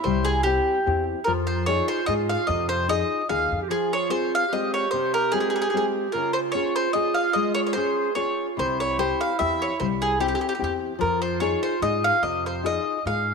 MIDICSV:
0, 0, Header, 1, 5, 480
1, 0, Start_track
1, 0, Key_signature, -4, "minor"
1, 0, Tempo, 406780
1, 59, Time_signature, 3, 2, 24, 8
1, 15744, End_track
2, 0, Start_track
2, 0, Title_t, "Mandolin"
2, 0, Program_c, 0, 25
2, 44, Note_on_c, 0, 72, 59
2, 291, Note_on_c, 0, 68, 79
2, 319, Note_off_c, 0, 72, 0
2, 506, Note_off_c, 0, 68, 0
2, 512, Note_on_c, 0, 67, 79
2, 1214, Note_off_c, 0, 67, 0
2, 1467, Note_on_c, 0, 70, 57
2, 1540, Note_off_c, 0, 70, 0
2, 1732, Note_on_c, 0, 72, 71
2, 1958, Note_off_c, 0, 72, 0
2, 1963, Note_on_c, 0, 73, 79
2, 2204, Note_off_c, 0, 73, 0
2, 2220, Note_on_c, 0, 72, 85
2, 2423, Note_off_c, 0, 72, 0
2, 2434, Note_on_c, 0, 75, 78
2, 2505, Note_off_c, 0, 75, 0
2, 2707, Note_on_c, 0, 77, 74
2, 2906, Note_off_c, 0, 77, 0
2, 2913, Note_on_c, 0, 75, 61
2, 3157, Note_off_c, 0, 75, 0
2, 3172, Note_on_c, 0, 72, 80
2, 3400, Note_off_c, 0, 72, 0
2, 3414, Note_on_c, 0, 75, 91
2, 3856, Note_off_c, 0, 75, 0
2, 3887, Note_on_c, 0, 77, 67
2, 4233, Note_off_c, 0, 77, 0
2, 4377, Note_on_c, 0, 68, 67
2, 4617, Note_off_c, 0, 68, 0
2, 4638, Note_on_c, 0, 73, 75
2, 4838, Note_off_c, 0, 73, 0
2, 4843, Note_on_c, 0, 72, 76
2, 5090, Note_off_c, 0, 72, 0
2, 5132, Note_on_c, 0, 77, 84
2, 5328, Note_off_c, 0, 77, 0
2, 5341, Note_on_c, 0, 75, 65
2, 5581, Note_off_c, 0, 75, 0
2, 5591, Note_on_c, 0, 73, 68
2, 5787, Note_off_c, 0, 73, 0
2, 5792, Note_on_c, 0, 72, 71
2, 6060, Note_off_c, 0, 72, 0
2, 6064, Note_on_c, 0, 70, 81
2, 6269, Note_off_c, 0, 70, 0
2, 6274, Note_on_c, 0, 68, 78
2, 6362, Note_off_c, 0, 68, 0
2, 6376, Note_on_c, 0, 68, 54
2, 6469, Note_off_c, 0, 68, 0
2, 6489, Note_on_c, 0, 68, 60
2, 6543, Note_off_c, 0, 68, 0
2, 6557, Note_on_c, 0, 68, 55
2, 6614, Note_off_c, 0, 68, 0
2, 6628, Note_on_c, 0, 68, 68
2, 6713, Note_off_c, 0, 68, 0
2, 6726, Note_on_c, 0, 68, 46
2, 6795, Note_off_c, 0, 68, 0
2, 6809, Note_on_c, 0, 68, 52
2, 6904, Note_off_c, 0, 68, 0
2, 7224, Note_on_c, 0, 70, 58
2, 7468, Note_off_c, 0, 70, 0
2, 7473, Note_on_c, 0, 72, 74
2, 7535, Note_off_c, 0, 72, 0
2, 7691, Note_on_c, 0, 73, 78
2, 7942, Note_off_c, 0, 73, 0
2, 7973, Note_on_c, 0, 72, 82
2, 8175, Note_off_c, 0, 72, 0
2, 8180, Note_on_c, 0, 75, 69
2, 8431, Note_on_c, 0, 77, 77
2, 8454, Note_off_c, 0, 75, 0
2, 8653, Note_on_c, 0, 75, 68
2, 8667, Note_off_c, 0, 77, 0
2, 8899, Note_off_c, 0, 75, 0
2, 8903, Note_on_c, 0, 73, 81
2, 8962, Note_off_c, 0, 73, 0
2, 9045, Note_on_c, 0, 73, 55
2, 9116, Note_off_c, 0, 73, 0
2, 9121, Note_on_c, 0, 72, 85
2, 9585, Note_off_c, 0, 72, 0
2, 9618, Note_on_c, 0, 73, 64
2, 9974, Note_off_c, 0, 73, 0
2, 10139, Note_on_c, 0, 72, 67
2, 10375, Note_off_c, 0, 72, 0
2, 10387, Note_on_c, 0, 73, 74
2, 10605, Note_off_c, 0, 73, 0
2, 10609, Note_on_c, 0, 72, 77
2, 10851, Note_off_c, 0, 72, 0
2, 10864, Note_on_c, 0, 77, 75
2, 11070, Note_off_c, 0, 77, 0
2, 11079, Note_on_c, 0, 76, 66
2, 11350, Note_on_c, 0, 73, 62
2, 11354, Note_off_c, 0, 76, 0
2, 11553, Note_off_c, 0, 73, 0
2, 11560, Note_on_c, 0, 72, 58
2, 11631, Note_off_c, 0, 72, 0
2, 11820, Note_on_c, 0, 68, 69
2, 12036, Note_off_c, 0, 68, 0
2, 12041, Note_on_c, 0, 67, 65
2, 12120, Note_off_c, 0, 67, 0
2, 12134, Note_on_c, 0, 67, 50
2, 12199, Note_off_c, 0, 67, 0
2, 12213, Note_on_c, 0, 67, 52
2, 12270, Note_off_c, 0, 67, 0
2, 12285, Note_on_c, 0, 67, 52
2, 12362, Note_off_c, 0, 67, 0
2, 12376, Note_on_c, 0, 67, 64
2, 12433, Note_off_c, 0, 67, 0
2, 12447, Note_on_c, 0, 67, 42
2, 12539, Note_off_c, 0, 67, 0
2, 12553, Note_on_c, 0, 67, 49
2, 12656, Note_off_c, 0, 67, 0
2, 12990, Note_on_c, 0, 70, 52
2, 13231, Note_off_c, 0, 70, 0
2, 13236, Note_on_c, 0, 72, 76
2, 13450, Note_off_c, 0, 72, 0
2, 13455, Note_on_c, 0, 73, 75
2, 13708, Note_off_c, 0, 73, 0
2, 13721, Note_on_c, 0, 72, 69
2, 13931, Note_off_c, 0, 72, 0
2, 13953, Note_on_c, 0, 75, 74
2, 14197, Note_off_c, 0, 75, 0
2, 14211, Note_on_c, 0, 77, 80
2, 14419, Note_off_c, 0, 77, 0
2, 14430, Note_on_c, 0, 75, 63
2, 14679, Note_off_c, 0, 75, 0
2, 14705, Note_on_c, 0, 72, 60
2, 14909, Note_off_c, 0, 72, 0
2, 14938, Note_on_c, 0, 75, 76
2, 15385, Note_off_c, 0, 75, 0
2, 15422, Note_on_c, 0, 77, 59
2, 15744, Note_off_c, 0, 77, 0
2, 15744, End_track
3, 0, Start_track
3, 0, Title_t, "Clarinet"
3, 0, Program_c, 1, 71
3, 0, Note_on_c, 1, 64, 82
3, 1184, Note_off_c, 1, 64, 0
3, 1529, Note_on_c, 1, 65, 77
3, 4116, Note_off_c, 1, 65, 0
3, 4273, Note_on_c, 1, 67, 59
3, 4354, Note_on_c, 1, 65, 79
3, 4372, Note_off_c, 1, 67, 0
3, 5286, Note_off_c, 1, 65, 0
3, 5293, Note_on_c, 1, 67, 82
3, 7233, Note_on_c, 1, 65, 80
3, 7250, Note_off_c, 1, 67, 0
3, 9157, Note_on_c, 1, 68, 101
3, 9175, Note_off_c, 1, 65, 0
3, 9624, Note_off_c, 1, 68, 0
3, 9631, Note_on_c, 1, 65, 68
3, 10111, Note_on_c, 1, 64, 78
3, 10129, Note_off_c, 1, 65, 0
3, 12693, Note_off_c, 1, 64, 0
3, 12980, Note_on_c, 1, 65, 78
3, 15622, Note_off_c, 1, 65, 0
3, 15744, End_track
4, 0, Start_track
4, 0, Title_t, "Nylon-string guitar"
4, 0, Program_c, 2, 24
4, 63, Note_on_c, 2, 55, 62
4, 524, Note_off_c, 2, 55, 0
4, 537, Note_on_c, 2, 60, 46
4, 545, Note_on_c, 2, 64, 45
4, 546, Note_on_c, 2, 67, 53
4, 919, Note_off_c, 2, 60, 0
4, 922, Note_off_c, 2, 64, 0
4, 924, Note_off_c, 2, 67, 0
4, 1015, Note_on_c, 2, 60, 39
4, 1023, Note_on_c, 2, 64, 33
4, 1025, Note_on_c, 2, 67, 46
4, 1396, Note_off_c, 2, 60, 0
4, 1401, Note_off_c, 2, 64, 0
4, 1402, Note_off_c, 2, 67, 0
4, 1499, Note_on_c, 2, 53, 66
4, 1956, Note_off_c, 2, 53, 0
4, 1978, Note_on_c, 2, 63, 50
4, 1983, Note_on_c, 2, 65, 42
4, 1989, Note_on_c, 2, 68, 54
4, 2352, Note_off_c, 2, 63, 0
4, 2355, Note_off_c, 2, 65, 0
4, 2359, Note_off_c, 2, 68, 0
4, 2450, Note_on_c, 2, 63, 40
4, 2457, Note_on_c, 2, 65, 37
4, 2465, Note_on_c, 2, 68, 42
4, 2827, Note_off_c, 2, 63, 0
4, 2832, Note_off_c, 2, 65, 0
4, 2836, Note_off_c, 2, 68, 0
4, 2917, Note_on_c, 2, 48, 57
4, 3381, Note_off_c, 2, 48, 0
4, 3404, Note_on_c, 2, 63, 51
4, 3407, Note_on_c, 2, 65, 40
4, 3419, Note_on_c, 2, 68, 54
4, 3788, Note_off_c, 2, 63, 0
4, 3789, Note_off_c, 2, 65, 0
4, 3797, Note_off_c, 2, 68, 0
4, 3885, Note_on_c, 2, 63, 41
4, 3889, Note_on_c, 2, 65, 31
4, 3893, Note_on_c, 2, 68, 43
4, 4271, Note_off_c, 2, 63, 0
4, 4272, Note_off_c, 2, 65, 0
4, 4277, Note_off_c, 2, 68, 0
4, 4370, Note_on_c, 2, 53, 61
4, 4831, Note_on_c, 2, 60, 43
4, 4836, Note_off_c, 2, 53, 0
4, 4844, Note_on_c, 2, 65, 37
4, 4849, Note_on_c, 2, 68, 47
4, 5225, Note_off_c, 2, 60, 0
4, 5233, Note_off_c, 2, 65, 0
4, 5234, Note_off_c, 2, 68, 0
4, 5337, Note_on_c, 2, 60, 38
4, 5343, Note_on_c, 2, 56, 35
4, 5346, Note_on_c, 2, 65, 32
4, 5719, Note_off_c, 2, 60, 0
4, 5723, Note_off_c, 2, 56, 0
4, 5723, Note_off_c, 2, 65, 0
4, 5816, Note_on_c, 2, 48, 62
4, 6276, Note_off_c, 2, 48, 0
4, 6297, Note_on_c, 2, 56, 44
4, 6297, Note_on_c, 2, 60, 42
4, 6303, Note_on_c, 2, 65, 41
4, 6673, Note_off_c, 2, 60, 0
4, 6675, Note_off_c, 2, 56, 0
4, 6675, Note_off_c, 2, 65, 0
4, 6771, Note_on_c, 2, 60, 38
4, 6777, Note_on_c, 2, 65, 32
4, 6782, Note_on_c, 2, 56, 41
4, 7151, Note_off_c, 2, 60, 0
4, 7151, Note_off_c, 2, 65, 0
4, 7156, Note_off_c, 2, 56, 0
4, 7250, Note_on_c, 2, 49, 65
4, 7706, Note_off_c, 2, 49, 0
4, 7726, Note_on_c, 2, 61, 44
4, 7727, Note_on_c, 2, 65, 44
4, 7736, Note_on_c, 2, 68, 52
4, 8102, Note_off_c, 2, 65, 0
4, 8103, Note_off_c, 2, 61, 0
4, 8109, Note_off_c, 2, 68, 0
4, 8200, Note_on_c, 2, 61, 41
4, 8204, Note_on_c, 2, 65, 37
4, 8205, Note_on_c, 2, 68, 44
4, 8581, Note_off_c, 2, 61, 0
4, 8581, Note_off_c, 2, 68, 0
4, 8582, Note_off_c, 2, 65, 0
4, 8676, Note_on_c, 2, 56, 66
4, 9139, Note_off_c, 2, 56, 0
4, 9162, Note_on_c, 2, 61, 38
4, 9170, Note_on_c, 2, 65, 38
4, 9172, Note_on_c, 2, 68, 49
4, 9544, Note_off_c, 2, 61, 0
4, 9549, Note_off_c, 2, 68, 0
4, 9550, Note_off_c, 2, 65, 0
4, 9623, Note_on_c, 2, 61, 37
4, 9629, Note_on_c, 2, 65, 34
4, 9633, Note_on_c, 2, 68, 43
4, 10017, Note_off_c, 2, 61, 0
4, 10019, Note_off_c, 2, 65, 0
4, 10022, Note_off_c, 2, 68, 0
4, 10111, Note_on_c, 2, 48, 57
4, 10584, Note_off_c, 2, 48, 0
4, 10596, Note_on_c, 2, 60, 47
4, 10601, Note_on_c, 2, 64, 36
4, 10608, Note_on_c, 2, 67, 48
4, 10986, Note_off_c, 2, 60, 0
4, 10988, Note_off_c, 2, 64, 0
4, 10993, Note_off_c, 2, 67, 0
4, 11076, Note_on_c, 2, 60, 36
4, 11083, Note_on_c, 2, 64, 35
4, 11085, Note_on_c, 2, 67, 47
4, 11467, Note_off_c, 2, 60, 0
4, 11467, Note_off_c, 2, 64, 0
4, 11471, Note_off_c, 2, 67, 0
4, 11575, Note_on_c, 2, 55, 51
4, 12028, Note_off_c, 2, 55, 0
4, 12033, Note_on_c, 2, 60, 41
4, 12039, Note_on_c, 2, 64, 39
4, 12041, Note_on_c, 2, 67, 50
4, 12421, Note_off_c, 2, 60, 0
4, 12424, Note_off_c, 2, 67, 0
4, 12425, Note_off_c, 2, 64, 0
4, 12492, Note_on_c, 2, 60, 39
4, 12499, Note_on_c, 2, 67, 43
4, 12502, Note_on_c, 2, 64, 35
4, 12888, Note_off_c, 2, 60, 0
4, 12890, Note_off_c, 2, 64, 0
4, 12891, Note_off_c, 2, 67, 0
4, 12964, Note_on_c, 2, 53, 60
4, 13445, Note_off_c, 2, 53, 0
4, 13461, Note_on_c, 2, 63, 47
4, 13470, Note_on_c, 2, 68, 55
4, 13471, Note_on_c, 2, 65, 39
4, 13850, Note_off_c, 2, 63, 0
4, 13853, Note_off_c, 2, 65, 0
4, 13856, Note_off_c, 2, 68, 0
4, 13944, Note_on_c, 2, 63, 44
4, 13950, Note_on_c, 2, 65, 35
4, 13952, Note_on_c, 2, 68, 44
4, 14335, Note_off_c, 2, 63, 0
4, 14336, Note_off_c, 2, 65, 0
4, 14338, Note_off_c, 2, 68, 0
4, 14434, Note_on_c, 2, 48, 54
4, 14906, Note_off_c, 2, 48, 0
4, 14906, Note_on_c, 2, 63, 43
4, 14916, Note_on_c, 2, 65, 42
4, 14920, Note_on_c, 2, 68, 51
4, 15306, Note_off_c, 2, 63, 0
4, 15308, Note_off_c, 2, 65, 0
4, 15308, Note_off_c, 2, 68, 0
4, 15408, Note_on_c, 2, 63, 31
4, 15413, Note_on_c, 2, 65, 30
4, 15417, Note_on_c, 2, 68, 38
4, 15744, Note_off_c, 2, 63, 0
4, 15744, Note_off_c, 2, 65, 0
4, 15744, Note_off_c, 2, 68, 0
4, 15744, End_track
5, 0, Start_track
5, 0, Title_t, "Upright bass"
5, 0, Program_c, 3, 32
5, 62, Note_on_c, 3, 36, 96
5, 682, Note_off_c, 3, 36, 0
5, 1027, Note_on_c, 3, 40, 80
5, 1333, Note_off_c, 3, 40, 0
5, 1503, Note_on_c, 3, 41, 83
5, 2116, Note_off_c, 3, 41, 0
5, 2453, Note_on_c, 3, 44, 77
5, 2759, Note_off_c, 3, 44, 0
5, 2934, Note_on_c, 3, 41, 94
5, 3555, Note_off_c, 3, 41, 0
5, 3893, Note_on_c, 3, 39, 74
5, 4126, Note_off_c, 3, 39, 0
5, 4146, Note_on_c, 3, 41, 72
5, 4344, Note_off_c, 3, 41, 0
5, 10130, Note_on_c, 3, 36, 75
5, 10755, Note_off_c, 3, 36, 0
5, 11097, Note_on_c, 3, 40, 81
5, 11406, Note_off_c, 3, 40, 0
5, 11568, Note_on_c, 3, 36, 87
5, 12189, Note_off_c, 3, 36, 0
5, 12526, Note_on_c, 3, 40, 77
5, 12836, Note_off_c, 3, 40, 0
5, 12997, Note_on_c, 3, 41, 94
5, 13619, Note_off_c, 3, 41, 0
5, 13945, Note_on_c, 3, 44, 81
5, 14261, Note_off_c, 3, 44, 0
5, 14425, Note_on_c, 3, 41, 77
5, 15062, Note_off_c, 3, 41, 0
5, 15403, Note_on_c, 3, 44, 75
5, 15727, Note_off_c, 3, 44, 0
5, 15744, End_track
0, 0, End_of_file